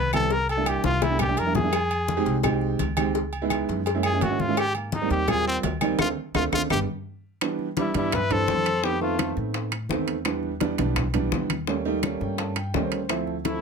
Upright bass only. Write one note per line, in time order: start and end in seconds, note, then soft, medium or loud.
0.00 0.78 C2 medium
0.84 1.34 C2 loud
1.37 2.20 F2 medium
2.26 2.76 C2 loud
2.79 3.63 C#2 medium
3.69 4.18 F#2 loud
4.22 5.05 G#2 medium
5.10 5.60 D#2 loud
5.64 5.97 D2 medium
5.99 6.12 D2 loud
6.34 6.48 D2 medium
6.52 6.66 D2 loud
6.70 6.83 G1 loud
7.95 8.44 G2 medium
8.48 9.31 F2 medium
9.37 9.86 A2 medium
9.89 10.73 E2 medium
10.79 11.28 B1 loud
11.32 12.15 D#2 medium
12.21 12.70 G2 medium
12.74 13.57 D2 medium